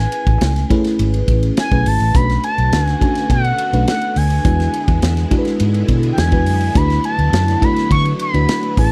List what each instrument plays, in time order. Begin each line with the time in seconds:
Already playing: fm electric piano A3 C#4 E4 G#4 B4, analog synth lead G#5
0.12 ride
0.27 fingered electric bass A1, kick, ride
0.41 fingered electric bass C#2, snare, ride
0.56 snare, ride
0.70 fm electric piano A3 C#4 E4 G#4 B4, kick, ride
0.84 snare, ride
0.99 fingered electric bass G#1, ride
1.14 ride
1.28 fingered electric bass A1, kick, ride
1.43 ride
1.57 analog synth lead G#5, snare, ride
1.71 fingered electric bass B1, fm electric piano A3 C#4 E4 G#4 B4, kick, ride
1.86 fingered electric bass G#1, analog synth lead A5, open hi-hat, ride
2.00 fingered electric bass A1, ride
2.14 fingered electric bass B1, string machine D3 A3 B3 F#4, fm electric piano A3 C#4 D4 F#4 B4, analog synth lead B5, kick, hi-hat pedal, ride
2.30 snare, ride
2.43 analog synth lead A5, ride
2.58 fingered electric bass B1, ride
2.72 fingered electric bass D2, snare, ride
2.82 analog synth lead G#5
2.87 snare, ride
3.00 fm electric piano A3 C#4 D4 F#4 A4, analog synth lead G#5, kick, ride
3.15 snare, ride
3.30 fingered electric bass B2, analog synth lead F#5, kick, ride
3.45 ride
3.58 ride
3.72 fingered electric bass B1, fm electric piano A3 C#4 D4 F#4 B4, ride
3.88 analog synth lead F#5, snare, ride
4.01 ride
4.16 fingered electric bass D2, analog synth lead G#5, open hi-hat, ride
4.30 ride
4.44 fingered electric bass E2, string machine D3 G#3 E4, fm electric piano G#3 D4 E4 F#4 B4, kick, hi-hat pedal, ride
4.60 snare, ride
4.74 ride
4.88 fingered electric bass E2, kick, ride
5.02 fingered electric bass E2, snare, ride
5.17 snare, ride
5.30 fm electric piano G#3 D4 E4 F#4 A4, kick, ride
5.38 fm electric piano B4
5.45 snare, ride
5.60 fingered electric bass G#2, ride
5.74 ride
5.88 fingered electric bass B2, kick, ride
6.03 ride
6.13 analog synth lead G5
6.18 fingered electric bass E2, analog synth lead G#5, snare, ride
6.31 fm electric piano G#3 D4 E4 F#4 B4, kick, ride
6.46 fingered electric bass F#2, open hi-hat, ride
6.61 ride
6.75 fingered electric bass D2, string machine F#3, fm electric piano A3 D4 E4 F#4 B4, analog synth lead B5, kick, hi-hat pedal, ride
6.90 snare, ride
7.04 analog synth lead A5, ride
7.18 fingered electric bass D2, ride
7.33 fingered electric bass F#2, snare, ride
7.48 snare, ride
7.61 fm electric piano A3 D4 E4 F#4 B4, analog synth lead B5, kick, ride
7.76 snare, ride
7.91 fingered electric bass D3, analog synth lead C#6, kick, ride
8.05 ride
8.19 analog synth lead B5, ride
8.33 fingered electric bass D2, fm electric piano A3 D4 E4 F#4 B4, ride
8.49 snare, ride
8.63 ride
8.77 fingered electric bass A1, string machine C#3 G#3 A3, fm electric piano A3 C#4 E4 G#4 B4, analog synth lead A5, kick, open hi-hat, ride